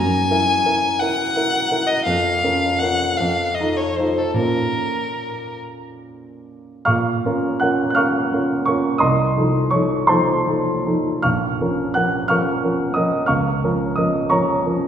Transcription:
Already playing: grand piano F#2, violin G#5
0.31 grand piano E4 A#4
0.66 grand piano E4 A#4
0.99 grand piano E4 A#4, violin F#5
1.36 grand piano E4 A#4
1.71 grand piano E4 A#4
1.87 violin D#5
2.05 grand piano F2, violin F5
2.44 grand piano C#4 F4 A#4
2.79 grand piano C#4 F4 A#4, violin F#5
3.17 grand piano F2, violin F5
3.54 violin D#5
3.60 grand piano D#4 F4 A4
3.77 violin C#5
3.96 grand piano D#4, violin C5
4.00 grand piano F4 A4
4.18 violin A4
4.34 grand piano A#2 C#4 F4, violin A#4
4.38 grand piano A#4
6.85 grand piano A#2 F5 C#6 F6
7.25 grand piano C#4 F4 A#4
7.60 grand piano C#4 F4 A#4 F#5 F#6
7.90 grand piano F#6
7.95 grand piano C#4 F4 A#4 F5 C#6 F6
8.33 grand piano C#4 F4 A#4
8.66 grand piano C#4 F4 A#4 C#5 C#6
8.98 grand piano C2 D#5 C6 D#6
9.36 grand piano F3 D#4 A4
9.71 grand piano F3 D#4 A4 C#5 C#6
10.07 grand piano F3 D#4 A4 C5 A5 C6
10.47 grand piano F3 D#4 A4
10.86 grand piano F3 D#4 A4
11.22 grand piano A#1 F5 C#6 F6
11.61 grand piano F3 C#4 A#4
11.94 grand piano F3 C#4 A#4 F#5 F#6
12.28 grand piano F3 C#4 A#4 F5 C#6 F6
12.64 grand piano F3 C#4 A#4
12.94 grand piano F3 C#4 A#4 D#5 D#6
13.26 grand piano C#2 F5 C#6 F6
13.64 grand piano F3 C#4 A#4
13.96 grand piano F3 C#4 A#4 D#5 D#6
14.30 grand piano F3 C#4 A#4 C#5 A#5 C#6
14.66 grand piano F3 C#4 A#4

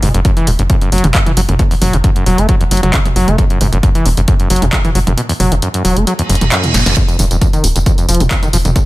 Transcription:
0.02 analog synth bass F#1, acid bass G#2, mid tom, open hi-hat
0.14 analog synth bass F#1, acid bass F#2, closed hi-hat
0.25 acid bass F#2, kick, closed hi-hat
0.37 acid bass E3, closed hi-hat
0.47 analog synth bass E1, acid bass F#2, open hi-hat
0.59 analog synth bass F#1, acid bass F#2, closed hi-hat
0.70 acid bass F#2, kick, closed hi-hat
0.81 acid bass F#2, closed hi-hat
0.92 analog synth bass F#1, acid bass F#3, open hi-hat
0.98 closed hi-hat
1.04 analog synth bass F#1, acid bass B2, closed hi-hat, mid tom
1.14 acid bass F#2, kick, clap, closed hi-hat
1.26 acid bass E3, closed hi-hat, mid tom
1.37 analog synth bass F#1, acid bass F#3, open hi-hat
1.49 analog synth bass F#1, acid bass F#2, closed hi-hat, mid tom
1.59 acid bass B2, kick, closed hi-hat
1.71 acid bass E2, open hi-hat
1.82 analog synth bass F#1, acid bass F#3, mid tom, open hi-hat
1.93 analog synth bass F#1, acid bass B2, closed hi-hat
2.04 acid bass F#2, kick, closed hi-hat
2.16 acid bass F#2, closed hi-hat
2.26 analog synth bass E1, acid bass F#3, open hi-hat
2.38 analog synth bass F#1, acid bass A3, closed hi-hat
2.49 acid bass F#3, kick, closed hi-hat
2.61 acid bass E2, closed hi-hat
2.71 analog synth bass F#1, acid bass F#3, open hi-hat
2.77 closed hi-hat
2.83 analog synth bass F#1, acid bass F#3, closed hi-hat, mid tom
2.94 acid bass C#3, kick, clap, closed hi-hat
3.05 acid bass E2, closed hi-hat, mid tom
3.16 analog synth bass F#1, acid bass F#3, open hi-hat
3.28 analog synth bass F#1, acid bass A3, closed hi-hat, mid tom
3.38 acid bass F#2, kick, closed hi-hat
3.50 acid bass F#2, closed hi-hat
3.61 analog synth bass F#1, acid bass G#2, mid tom, open hi-hat
3.73 analog synth bass F#1, acid bass F#2, closed hi-hat
3.83 acid bass F#2, kick, closed hi-hat
3.95 acid bass E3, closed hi-hat
4.05 analog synth bass E1, acid bass F#2, open hi-hat
4.17 analog synth bass F#1, acid bass F#2, closed hi-hat
4.28 acid bass F#2, kick, closed hi-hat
4.40 acid bass F#2, closed hi-hat
4.50 analog synth bass F#1, acid bass F#3, open hi-hat
4.56 closed hi-hat
4.62 analog synth bass F#1, acid bass B2, closed hi-hat, mid tom
4.73 acid bass F#2, kick, clap, closed hi-hat
4.85 acid bass E3, closed hi-hat, mid tom
4.95 analog synth bass F#1, acid bass F#3, open hi-hat
5.07 analog synth bass F#1, acid bass F#2, closed hi-hat, mid tom
5.17 acid bass B2, closed hi-hat
5.29 acid bass E2, open hi-hat
5.40 analog synth bass F#1, acid bass F#3, mid tom, open hi-hat
5.52 analog synth bass F#1, acid bass B2, closed hi-hat
5.62 acid bass F#2, closed hi-hat
5.74 acid bass F#2, closed hi-hat
5.85 analog synth bass E1, acid bass F#3, open hi-hat
5.96 analog synth bass F#1, acid bass A3, closed hi-hat
6.07 acid bass F#3, closed hi-hat, reverse cymbal
6.19 acid bass E2, closed hi-hat
6.29 analog synth bass F#1, acid bass F#2, open hi-hat
6.35 closed hi-hat
6.41 analog synth bass F#1, acid bass F#2, closed hi-hat, mid tom
6.52 acid bass F#2, clap, closed hi-hat
6.64 acid bass E2, closed hi-hat, mid tom
6.74 analog synth bass F#1, acid bass B2, snare, open hi-hat
6.86 analog synth bass F#1, acid bass F#2, snare, closed hi-hat, mid tom
6.96 acid bass F2, kick, closed hi-hat, tambourine
7.08 acid bass F2, closed hi-hat, tambourine
7.19 analog synth bass F1, acid bass G2, mid tom, open hi-hat, tambourine
7.31 analog synth bass F1, acid bass F2, closed hi-hat, tambourine
7.41 acid bass F2, kick, closed hi-hat, tambourine
7.53 acid bass D#3, closed hi-hat, tambourine
7.64 analog synth bass D#1, acid bass F2, open hi-hat, tambourine
7.76 analog synth bass F1, acid bass F2, closed hi-hat, tambourine
7.86 acid bass F2, kick, closed hi-hat, tambourine
7.98 acid bass F2, closed hi-hat, tambourine
8.08 analog synth bass F1, acid bass F3, open hi-hat, tambourine
8.15 closed hi-hat
8.20 analog synth bass F1, acid bass A#2, closed hi-hat, mid tom, tambourine
8.31 acid bass F2, kick, clap, closed hi-hat, tambourine
8.43 acid bass D#3, closed hi-hat, mid tom, tambourine
8.53 analog synth bass F1, acid bass F3, open hi-hat, tambourine
8.65 analog synth bass F1, acid bass F2, closed hi-hat, mid tom, tambourine
8.76 acid bass A#2, kick, closed hi-hat, tambourine

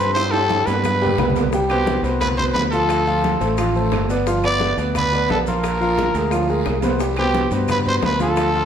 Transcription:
Already playing: fingered electric bass G2, trumpet B4
0.00 grand piano C4 C5 C6, short guiro
0.14 trumpet C5, high bongo, high timbale, claves, maracas
0.31 grand piano G4 G5 G6, trumpet A4, high conga, high timbale, maracas
0.50 high bongo, high conga, high timbale, short guiro, maracas
0.66 fingered electric bass G2, grand piano B3 B4 B5, trumpet B4, high bongo, high conga, low timbale, short guiro, maracas
0.84 high bongo, high conga, long guiro, claves, maracas
1.01 grand piano G3 G4 G5, high bongo, low timbale, maracas
1.06 low conga
1.18 fingered electric bass C2, grand piano B3 B4 B5, high bongo, low bongo, low conga, low timbale, short guiro, claves, maracas
1.30 low conga
1.36 high bongo, low timbale, short guiro, maracas
1.41 low conga
1.53 grand piano G3 G4 G5, high bongo, high conga, long guiro, maracas
1.70 grand piano B2 B4 C5, trumpet G4, high conga, high timbale, claves, maracas
1.87 high bongo, high conga, high timbale, low timbale, short guiro, maracas
2.03 fingered electric bass C2, grand piano B2 B4 C5, high conga, short guiro, maracas
2.21 trumpet B4, high bongo, high conga, low conga, high timbale, claves, maracas
2.37 grand piano B2 B4 C5, trumpet C5, high conga, low conga
2.54 fingered electric bass D2, trumpet B4, high bongo, low bongo, high conga, high timbale, low timbale, short guiro
2.71 grand piano F3 F4 F5, trumpet A4, short guiro, maracas
2.89 high bongo, high conga, high timbale, long guiro, claves, maracas
3.07 grand piano F3 F4 F5, high conga, maracas
3.23 high bongo, high conga, high timbale, low timbale, short guiro, maracas
3.40 fingered electric bass A1, grand piano A3 A4 C5, high bongo, high conga, high timbale, short guiro, maracas
3.58 grand piano F3 F4 F5, high bongo, high conga, high timbale, long guiro, claves, maracas
3.75 grand piano A3 A4 C5, high bongo, high conga, maracas
3.91 fingered electric bass G1, high bongo, low bongo, high conga, high timbale, low timbale, short guiro, claves, maracas
4.10 grand piano B3 B4 D5, high bongo, short guiro, maracas
4.26 grand piano F3 F4 F5, high bongo, high conga, long guiro, maracas
4.43 grand piano B3 B4 D5, trumpet D5, high conga, high timbale, claves, maracas
4.60 high bongo, high conga, high timbale, low timbale, short guiro, maracas
4.78 fingered electric bass D2, grand piano B3 B4 D5, high conga, short guiro, maracas
4.95 trumpet B4, high bongo, high conga, low conga, high timbale, long guiro, claves, maracas
5.12 grand piano B3 B4 D5, high conga, maracas
5.29 fingered electric bass A#1, trumpet A4, high bongo, low bongo, high conga, high timbale, low timbale, short guiro, maracas
5.47 grand piano F3 F4 F5, trumpet A#4, high conga, short guiro, maracas
5.64 high bongo, high conga, high timbale, long guiro, claves, maracas
5.80 grand piano F3 F4 F5, high conga, maracas
5.98 high bongo, high conga, high timbale, low timbale, short guiro, maracas
6.14 fingered electric bass D2, grand piano G#3 G#4 A#4, high bongo, high conga, high timbale, short guiro, maracas
6.31 grand piano F3 F4 F5, high bongo, high conga, high timbale, long guiro, claves, maracas
6.49 grand piano G#3 G#4 A#4, high bongo, high conga, maracas
6.65 fingered electric bass C2, high bongo, low bongo, high conga, low timbale, short guiro, claves, maracas
6.82 grand piano B3 B4 C5, high bongo, high conga, low timbale, short guiro, maracas
7.00 grand piano G3 G4 G5, high bongo, high conga, long guiro, maracas
7.17 grand piano B2 B4 C5, trumpet G4, high conga, high timbale, claves, maracas
7.34 high bongo, high conga, high timbale, low timbale, short guiro, maracas
7.51 fingered electric bass G2, grand piano B2 B4 C5, high conga, short guiro, maracas
7.68 trumpet B4, high bongo, high conga, low conga, high timbale, long guiro, claves, maracas
7.85 grand piano B2 B4 C5, trumpet C5, high conga, low conga, maracas
8.02 fingered electric bass D2, trumpet B4, high bongo, low bongo, high conga, high timbale, low timbale, short guiro, maracas
8.19 grand piano F3 F4 F5, trumpet A4, high conga, short guiro, maracas
8.36 high bongo, high conga, high timbale, long guiro, claves, maracas
8.53 grand piano F3 F4 F5, high conga, maracas

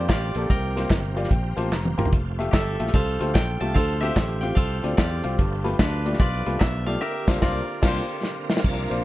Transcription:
Already playing: tonewheel organ D3 A#3 C4 G4, koto D#4 A4 C5
0.08 fingered electric bass A1, koto F4 G4 D5, kick, snare, clap, closed hi-hat, tambourine
0.35 fingered electric bass A#1, grand piano A#3 D4 G4 A4, closed hi-hat, tambourine
0.49 fingered electric bass C2, grand piano C3, tonewheel organ F3, koto A#4 G5, kick, closed hi-hat, tambourine
0.76 grand piano A#3 F4 G4 C5, snare, closed hi-hat, tambourine
0.90 fingered electric bass G1, kick, snare, clap, closed hi-hat, tambourine
1.16 grand piano A#3 F4 G4 D5 F5, closed hi-hat, tambourine
1.24 snare
1.31 fingered electric bass A#1, grand piano G5, kick, closed hi-hat, tambourine
1.57 fingered electric bass A1, grand piano A#3 F4 G4 C5 A5, closed hi-hat, tambourine
1.72 fingered electric bass F1, grand piano A#5, snare, clap, tambourine
1.85 high tom
1.98 fingered electric bass G1, grand piano A#3 F4 G4 A#4 C6, mid tom, tambourine
2.05 floor tom
2.12 fingered electric bass F1, tonewheel organ A3 F4, kick, closed hi-hat, tambourine
2.39 grand piano A3 F4 G4 E5, closed hi-hat, tambourine
2.51 fingered electric bass G1, koto G4 A4, kick, snare, clap, closed hi-hat, tambourine
2.55 koto E5
2.79 fingered electric bass A#1, grand piano A3 F4 G4 E5, closed hi-hat, tambourine
2.87 snare
2.94 fingered electric bass C2, koto A4 C5 F5, kick, closed hi-hat, tambourine
3.20 fingered electric bass D2, grand piano A3 F4 G4 C5, closed hi-hat, tambourine
3.34 fingered electric bass A#1, koto G5, kick, snare, clap, closed hi-hat, tambourine
3.60 fingered electric bass C2, grand piano A3 F4 G4 E5, koto A5, closed hi-hat, tambourine
3.74 fingered electric bass D2, grand piano D3, tonewheel organ C4, koto A4 C5 F5, kick, closed hi-hat, tambourine
4.01 grand piano C4 F4 G4 E5, koto G4 C5 E5, closed hi-hat, tambourine
4.16 fingered electric bass A1, kick, snare, clap, closed hi-hat, tambourine
4.41 grand piano C4 F4 G4 F5, koto G5, closed hi-hat, tambourine
4.55 fingered electric bass C2, koto A4 C5 F5, kick, closed hi-hat, tambourine
4.83 fingered electric bass D2, grand piano C4 F4 G4 D5, closed hi-hat, tambourine
4.97 fingered electric bass E2, koto F4 G4 D5, kick, snare, clap, closed hi-hat, tambourine
5.24 fingered electric bass C2, grand piano C4 F4 G4 F5, closed hi-hat, tambourine
5.38 fingered electric bass G1, grand piano G2, tonewheel organ A3 B3 G4, kick, closed hi-hat, tambourine
5.64 grand piano A3 F4 G4 B4, closed hi-hat, tambourine
5.79 fingered electric bass D2, koto D4 F4 B4, kick, snare, clap, closed hi-hat, tambourine
6.05 grand piano A3 F4 G4 D5, closed hi-hat, tambourine
6.13 snare
6.20 fingered electric bass B1, koto F4 B4 D5, kick, closed hi-hat, tambourine
6.46 fingered electric bass C2, grand piano A3 F4 G4 B4, closed hi-hat, tambourine
6.59 fingered electric bass B1, koto E5, kick, snare, clap, closed hi-hat, tambourine
6.86 grand piano A3 F4 G4 D5, koto F5, closed hi-hat, tambourine
7.01 tonewheel organ D3 A#3 C4 F4, koto G4 A#4 E5
7.28 fingered electric bass C2, grand piano A#3 D4 F4 C5, kick, snare, crash
7.42 fingered electric bass C2, grand piano A#3 D4 F4 C5, koto F4 A#4 D5, kick, snare
7.82 fingered electric bass C2, grand piano A#3 D4 F4 C5, koto F4 G4, kick, snare, crash
7.87 koto C5
8.23 snare
8.50 snare
8.57 snare
8.63 fingered electric bass C2, grand piano C3, tonewheel organ F3 A#3 D4, string section D4 F4 A#4 C5, kick, crash, tambourine
8.90 fingered electric bass A#1, grand piano A#3 D4 F4 C5, closed hi-hat, tambourine

